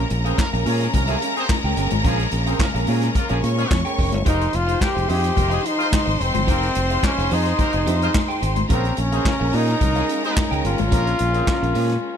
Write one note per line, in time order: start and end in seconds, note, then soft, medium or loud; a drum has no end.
0.00 4.22 G#3 medium
0.00 4.22 A#3 medium
0.00 4.22 C#4 medium
0.00 3.39 A#4 medium
0.00 3.39 A#5 loud
0.10 0.31 A#1 loud
0.10 muted clean electric guitar stroke medium
0.10 closed hi-hat medium
0.25 0.36 C4 medium
0.25 0.37 C#4 medium
0.25 0.36 G#4 medium
0.25 0.37 G#4 medium
0.25 0.37 A#4 medium
0.25 0.36 C5 loud
0.25 0.37 F5 medium
0.25 closed hi-hat soft
0.38 0.47 F3 medium
0.38 0.47 C#4 medium
0.38 0.47 A#4 loud
0.38 muted clean electric guitar stroke soft
0.38 kick loud
0.38 snare loud
0.38 clap medium
0.38 high conga medium
0.53 0.63 A#1 loud
0.53 0.65 C#4 medium
0.53 0.65 G#4 medium
0.53 0.65 A#4 medium
0.53 0.64 F5 medium
0.53 closed hi-hat soft
0.66 0.86 A#2 loud
0.66 0.88 F3 medium
0.66 0.88 C#4 medium
0.66 0.82 C#4 medium
0.66 0.88 G#4 loud
0.66 0.80 G#4 medium
0.66 0.80 A#4 medium
0.66 0.80 F5 medium
0.66 open hi-hat medium
0.81 muted clean electric guitar stroke soft
0.81 snare soft
0.81 closed hi-hat soft
0.93 1.14 C2 loud
0.93 1.06 F3 medium
0.93 1.06 C#4 medium
0.93 1.06 A#4 loud
0.93 muted clean electric guitar stroke soft
0.93 kick loud
0.93 closed hi-hat medium
0.93 muted conga medium
0.93 low conga medium
1.08 1.16 F3 medium
1.08 1.16 C#4 medium
1.08 1.20 C#4 medium
1.08 1.16 G#4 loud
1.08 1.21 G#4 medium
1.08 1.21 A#4 medium
1.08 1.21 F5 loud
1.08 closed hi-hat soft
1.21 1.34 C#4 medium
1.21 1.35 G#4 medium
1.21 1.35 A#4 medium
1.21 1.35 F5 medium
1.21 closed hi-hat medium
1.36 1.44 C4 loud
1.36 1.44 G#4 loud
1.36 1.44 C5 loud
1.36 muted clean electric guitar stroke soft
1.36 closed hi-hat soft
1.49 muted clean electric guitar stroke soft
1.49 kick loud
1.49 snare loud
1.49 clap loud
1.49 high conga medium
1.64 1.73 C#2 medium
1.64 1.76 C#4 medium
1.64 1.77 G#4 medium
1.64 1.77 A#4 medium
1.64 1.77 G5 medium
1.77 1.88 G1 loud
1.77 1.90 C#4 medium
1.77 1.90 G#4 medium
1.77 1.90 A#4 medium
1.77 1.90 G5 medium
1.77 closed hi-hat medium
1.90 2.01 G#1 medium
1.90 muted clean electric guitar stroke soft
1.90 closed hi-hat soft
1.90 high conga medium
2.04 2.25 A#1 loud
2.04 2.27 F3 loud
2.04 2.21 C#4 medium
2.04 2.26 C#4 loud
2.04 2.26 G#4 loud
2.04 2.19 G#4 medium
2.04 2.18 A#4 loud
2.04 2.18 F5 loud
2.04 kick loud
2.04 closed hi-hat medium
2.04 muted conga soft
2.19 muted clean electric guitar stroke soft
2.19 closed hi-hat soft
2.31 2.53 A#1 loud
2.31 muted clean electric guitar stroke soft
2.31 closed hi-hat medium
2.46 2.57 C4 medium
2.46 2.58 C#4 soft
2.46 2.57 G#4 medium
2.46 2.59 G#4 soft
2.46 2.58 A#4 medium
2.46 2.57 C5 medium
2.46 2.58 F5 medium
2.46 closed hi-hat soft
2.59 2.68 F3 medium
2.59 2.69 C#4 medium
2.59 2.68 A#4 medium
2.59 muted clean electric guitar stroke medium
2.59 kick loud
2.59 snare loud
2.59 clap medium
2.59 high conga medium
2.74 2.84 A#1 medium
2.74 2.86 C#4 medium
2.74 2.86 G#4 medium
2.74 2.86 A#4 medium
2.74 2.86 F5 medium
2.74 closed hi-hat soft
2.87 3.08 A#2 loud
2.87 3.10 F3 medium
2.87 3.04 C#4 medium
2.87 3.10 C#4 medium
2.87 3.10 G#4 loud
2.87 3.02 G#4 loud
2.87 3.02 A#4 loud
2.87 3.01 F5 medium
2.87 open hi-hat medium
3.02 muted clean electric guitar stroke soft
3.02 snare soft
3.02 closed hi-hat medium
3.15 3.27 C#3 medium
3.15 3.27 A#3 medium
3.15 3.27 F4 loud
3.15 muted clean electric guitar stroke soft
3.15 kick loud
3.15 closed hi-hat medium
3.15 muted conga medium
3.29 3.40 A#1 loud
3.29 3.38 F3 medium
3.29 3.38 C#4 medium
3.29 3.41 C#4 medium
3.29 3.38 G#4 loud
3.29 3.42 G#4 medium
3.29 3.42 A#4 medium
3.29 3.43 F5 medium
3.29 closed hi-hat soft
3.42 3.63 A#2 loud
3.42 3.56 C#4 medium
3.42 3.56 G#4 medium
3.42 3.56 A#4 medium
3.42 4.25 C#5 medium
3.42 3.56 F5 medium
3.42 4.25 C#6 medium
3.42 closed hi-hat medium
3.42 muted conga soft
3.57 3.68 F3 loud
3.57 3.68 C#4 loud
3.57 3.68 G#4 loud
3.57 muted clean electric guitar stroke medium
3.57 closed hi-hat soft
3.71 3.82 F2 loud
3.71 muted clean electric guitar stroke soft
3.71 kick loud
3.71 snare loud
3.71 clap loud
3.71 high conga medium
3.85 3.97 C#4 medium
3.85 3.97 G#4 medium
3.85 3.98 A#4 medium
3.85 3.98 G5 medium
3.85 closed hi-hat soft
3.98 4.14 F1 loud
3.98 4.11 C#4 medium
3.98 4.11 G#4 medium
3.98 4.11 A#4 medium
3.98 4.12 G5 medium
3.98 kick medium
3.98 open hi-hat medium
4.12 4.23 G1 medium
4.12 muted clean electric guitar stroke medium
4.12 closed hi-hat soft
4.12 high conga medium
4.25 4.47 F1 loud
4.25 8.66 F3 medium
4.25 8.66 G#3 medium
4.25 4.48 A#3 loud
4.25 4.42 D#4 medium
4.25 8.66 D#4 medium
4.25 4.57 D#4 loud
4.25 4.48 G4 loud
4.25 4.39 G#4 medium
4.25 4.48 A#4 loud
4.25 4.39 C5 loud
4.25 8.66 C5 loud
4.25 4.39 F5 loud
4.25 8.66 C6 loud
4.25 kick loud
4.25 closed hi-hat medium
4.25 muted conga medium
4.40 muted clean electric guitar stroke soft
4.40 closed hi-hat soft
4.53 4.74 F1 loud
4.53 4.85 F4 loud
4.53 muted clean electric guitar stroke soft
4.53 closed hi-hat medium
4.67 4.79 G#3 medium
4.67 4.79 D#4 medium
4.67 4.79 F4 medium
4.67 4.79 G#4 medium
4.67 4.79 C5 medium
4.67 4.79 F5 medium
4.67 closed hi-hat soft
4.80 4.90 A#3 medium
4.80 4.90 G4 medium
4.80 5.10 G4 loud
4.80 4.90 A#4 medium
4.80 muted clean electric guitar stroke soft
4.80 kick loud
4.80 snare loud
4.80 clap medium
4.80 high conga medium
4.95 5.06 F1 loud
4.95 5.06 D#4 medium
4.95 5.07 G#4 medium
4.95 5.07 C5 medium
4.95 5.07 F5 medium
4.95 closed hi-hat soft
5.08 5.30 F2 loud
5.08 5.31 F3 medium
5.08 5.29 D#4 medium
5.08 5.31 D#4 medium
5.08 5.68 G4 loud
5.08 5.22 G#4 loud
5.08 5.31 G#4 medium
5.08 5.22 C5 medium
5.08 5.21 F5 loud
5.08 open hi-hat medium
5.22 muted clean electric guitar stroke soft
5.22 snare soft
5.22 closed hi-hat soft
5.35 5.57 F1 loud
5.35 5.48 A#3 medium
5.35 5.48 G4 medium
5.35 5.48 A#4 loud
5.35 muted clean electric guitar stroke soft
5.35 kick medium
5.35 closed hi-hat medium
5.35 muted conga medium
5.35 low conga medium
5.50 5.59 F3 medium
5.50 5.61 D#4 medium
5.50 5.59 D#4 medium
5.50 5.62 G#4 medium
5.50 5.59 G#4 medium
5.50 5.63 C5 medium
5.50 5.63 F5 medium
5.50 closed hi-hat soft
5.63 5.77 D#4 medium
5.63 5.77 G#4 medium
5.63 5.77 C5 medium
5.63 5.76 F5 medium
5.63 closed hi-hat medium
5.67 6.24 D#4 loud
5.77 5.87 G#3 loud
5.77 5.87 F4 loud
5.77 5.87 C5 loud
5.77 muted clean electric guitar stroke soft
5.77 closed hi-hat soft
5.91 muted clean electric guitar stroke soft
5.91 kick loud
5.91 snare loud
5.91 clap loud
5.91 high conga medium
6.06 6.17 G#1 medium
6.06 muted clean electric guitar stroke medium
6.06 closed hi-hat soft
6.21 6.31 F1 medium
6.21 6.49 C4 medium
6.21 closed hi-hat medium
6.34 6.48 G1 medium
6.34 muted clean electric guitar stroke soft
6.34 closed hi-hat soft
6.34 high conga medium
6.47 6.68 F1 loud
6.47 6.70 A#3 loud
6.47 7.01 C4 loud
6.47 6.64 D#4 medium
6.47 6.70 G4 loud
6.47 6.62 G#4 medium
6.47 6.70 A#4 loud
6.47 6.62 C5 loud
6.47 6.61 F5 loud
6.47 kick loud
6.47 closed hi-hat medium
6.47 muted conga medium
6.62 muted clean electric guitar stroke soft
6.62 closed hi-hat soft
6.75 6.96 F1 loud
6.75 muted clean electric guitar stroke medium
6.75 closed hi-hat medium
6.90 7.01 G#3 medium
6.90 7.02 D#4 medium
6.90 7.01 F4 medium
6.90 7.02 G#4 medium
6.90 7.01 C5 medium
6.90 7.02 C5 medium
6.90 7.02 F5 medium
6.90 closed hi-hat soft
7.03 7.12 A#3 medium
7.03 7.35 C#4 loud
7.03 7.12 G4 medium
7.03 7.12 A#4 medium
7.03 muted clean electric guitar stroke soft
7.03 kick loud
7.03 snare loud
7.03 clap medium
7.03 high conga medium
7.18 7.28 F1 loud
7.18 7.30 D#4 soft
7.18 7.30 G#4 soft
7.18 7.30 C5 medium
7.18 7.29 F5 medium
7.18 closed hi-hat soft
7.31 7.52 F2 loud
7.31 7.53 F3 medium
7.31 7.53 D#4 medium
7.31 7.47 D#4 medium
7.31 8.43 D#4 loud
7.31 7.53 G#4 loud
7.31 7.46 G#4 loud
7.31 7.46 C5 loud
7.31 7.45 F5 medium
7.31 open hi-hat medium
7.46 muted clean electric guitar stroke soft
7.46 snare soft
7.46 closed hi-hat soft
7.58 7.70 A#3 medium
7.58 7.70 G4 medium
7.58 7.70 A#4 loud
7.58 muted clean electric guitar stroke medium
7.58 kick loud
7.58 closed hi-hat medium
7.58 muted conga medium
7.73 7.83 F1 loud
7.73 7.81 F3 medium
7.73 7.81 D#4 medium
7.73 7.81 G#4 medium
7.73 muted clean electric guitar stroke medium
7.73 closed hi-hat soft
7.86 8.07 F2 loud
7.86 8.02 D#4 medium
7.86 8.01 G#4 medium
7.86 8.00 C5 medium
7.86 8.00 F5 medium
7.86 closed hi-hat medium
8.01 8.09 G#3 loud
8.01 8.13 D#4 medium
8.01 8.09 F4 loud
8.01 8.13 G#4 medium
8.01 8.09 C5 loud
8.01 8.13 C5 medium
8.01 8.13 F5 medium
8.01 closed hi-hat soft
8.14 muted clean electric guitar stroke medium
8.14 kick loud
8.14 snare loud
8.14 clap loud
8.14 high conga medium
8.28 8.40 D#4 medium
8.28 8.40 G#4 medium
8.28 8.41 C5 medium
8.28 8.41 G5 loud
8.28 closed hi-hat soft
8.41 8.63 G#1 loud
8.41 8.55 D#4 medium
8.41 8.55 G#4 medium
8.41 8.55 C5 medium
8.41 8.55 G5 medium
8.41 closed hi-hat medium
8.56 muted clean electric guitar stroke soft
8.56 closed hi-hat soft
8.56 high conga medium
8.69 8.90 A#1 loud
8.69 8.92 F3 loud
8.69 12.17 G#3 medium
8.69 12.17 A#3 medium
8.69 9.02 C4 loud
8.69 8.86 C#4 medium
8.69 8.92 C#4 loud
8.69 12.17 C#4 medium
8.69 8.84 G#4 medium
8.69 8.92 A#4 loud
8.69 8.84 A#4 medium
8.69 11.99 A#4 medium
8.69 8.83 F5 medium
8.69 11.99 A#5 loud
8.69 kick loud
8.69 closed hi-hat medium
8.69 muted conga medium
8.84 muted clean electric guitar stroke soft
8.84 closed hi-hat soft
8.97 9.18 A#1 loud
8.97 9.57 C#4 loud
8.97 muted clean electric guitar stroke medium
8.97 closed hi-hat medium
9.12 9.23 C4 medium
9.12 9.24 C#4 soft
9.12 9.23 G#4 medium
9.12 9.24 G#4 medium
9.12 9.24 A#4 medium
9.12 9.23 C5 loud
9.12 9.24 F5 medium
9.12 closed hi-hat soft
9.25 9.34 F3 medium
9.25 9.34 C#4 medium
9.25 9.34 A#4 medium
9.25 muted clean electric guitar stroke soft
9.25 kick loud
9.25 snare loud
9.25 clap medium
9.25 high conga medium
9.40 9.50 A#1 loud
9.40 9.51 C#4 medium
9.40 9.52 G#4 medium
9.40 9.51 A#4 medium
9.40 9.51 F5 medium
9.52 9.74 A#2 loud
9.52 9.75 F3 medium
9.52 9.69 C#4 medium
9.52 9.75 C#4 medium
9.52 10.25 D#4 loud
9.52 9.67 G#4 medium
9.52 9.76 G#4 loud
9.52 9.66 A#4 loud
9.52 9.66 F5 loud
9.52 open hi-hat medium
9.67 muted clean electric guitar stroke soft
9.67 snare soft
9.67 closed hi-hat medium
9.81 10.01 C2 loud
9.81 9.93 F3 medium
9.81 9.93 C#4 medium
9.81 9.93 A#4 loud
9.81 muted clean electric guitar stroke soft
9.81 kick loud
9.81 closed hi-hat medium
9.81 muted conga medium
9.81 low conga medium
9.95 10.03 F3 medium
9.95 10.03 C#4 medium
9.95 10.08 C#4 medium
9.95 10.03 G#4 medium
9.95 10.08 G#4 medium
9.95 10.09 A#4 medium
9.95 10.09 F5 medium
9.95 closed hi-hat soft
10.09 10.22 C#4 medium
10.09 10.22 G#4 medium
10.09 10.22 A#4 medium
10.09 10.22 F5 medium
10.09 closed hi-hat medium
10.23 10.34 C4 loud
10.23 10.63 D#4 medium
10.23 10.34 G#4 loud
10.23 10.34 C5 loud
10.23 muted clean electric guitar stroke soft
10.23 closed hi-hat soft
10.37 muted clean electric guitar stroke soft
10.37 kick loud
10.37 snare loud
10.37 clap loud
10.37 high conga medium
10.51 10.61 C#2 medium
10.51 10.63 C#4 medium
10.51 10.63 G#4 medium
10.51 10.64 A#4 medium
10.51 10.64 G5 medium
10.51 closed hi-hat soft
10.64 10.75 G1 medium
10.64 10.77 C#4 medium
10.64 12.17 F4 loud
10.64 10.77 G#4 medium
10.64 10.78 A#4 medium
10.64 10.78 G5 medium
10.64 closed hi-hat medium
10.78 10.89 G#1 medium
10.78 muted clean electric guitar stroke medium
10.78 closed hi-hat soft
10.78 high conga medium
10.91 11.12 A#1 loud
10.91 11.14 F3 loud
10.91 11.08 C#4 loud
10.91 11.14 C#4 loud
10.91 11.06 G#4 loud
10.91 11.06 A#4 loud
10.91 11.14 A#4 loud
10.91 11.05 F5 loud
10.91 kick loud
10.91 closed hi-hat loud
10.91 muted conga soft
11.06 muted clean electric guitar stroke medium
11.06 closed hi-hat soft
11.19 11.41 A#1 loud
11.19 muted clean electric guitar stroke soft
11.19 closed hi-hat medium
11.34 11.45 C4 medium
11.34 11.46 C#4 soft
11.34 11.45 G#4 medium
11.34 11.46 G#4 medium
11.34 11.46 A#4 medium
11.34 11.45 C5 medium
11.34 11.45 F5 medium
11.34 closed hi-hat soft
11.47 11.56 F3 medium
11.47 11.56 C#4 medium
11.47 11.56 A#4 medium
11.47 muted clean electric guitar stroke soft
11.47 kick loud
11.47 snare loud
11.47 clap medium
11.47 high conga medium
11.61 11.72 A#1 loud
11.61 11.73 C#4 soft
11.61 11.74 G#4 medium
11.61 11.73 A#4 medium
11.61 11.73 F5 medium
11.61 closed hi-hat soft
11.74 11.96 A#2 loud
11.74 11.97 F3 medium
11.74 11.91 C#4 medium
11.74 11.97 C#4 medium
11.74 11.89 G#4 medium
11.74 11.97 G#4 medium
11.74 11.89 A#4 medium
11.74 11.88 F5 medium
11.74 open hi-hat medium
11.89 muted clean electric guitar stroke soft
11.89 snare soft
11.89 closed hi-hat soft